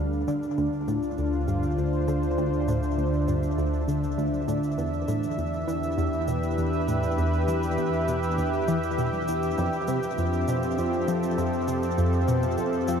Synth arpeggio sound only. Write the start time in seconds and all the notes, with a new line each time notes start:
Already playing: D2
0.28 D3
0.58 D2
0.88 A2
1.18 D2
1.48 G2
1.78 D2
2.08 D3
2.38 D2
2.68 A2
2.98 D2
3.28 G2
3.58 D2
3.88 D3
4.18 D2
4.48 A2
4.78 E2
5.08 A2
5.38 E2
5.68 E3
5.98 E2
6.28 B2
6.58 E2
6.88 A2
7.18 E2
7.48 E3
7.78 E2
8.08 B2
8.38 E2
8.68 E3
8.98 B2
9.28 E2
9.58 F2
9.88 C3
10.18 F2
10.48 B2
10.78 F2
11.08 F3
11.38 F2
11.68 C3
11.98 F2
12.28 B2
12.58 F2
12.88 F3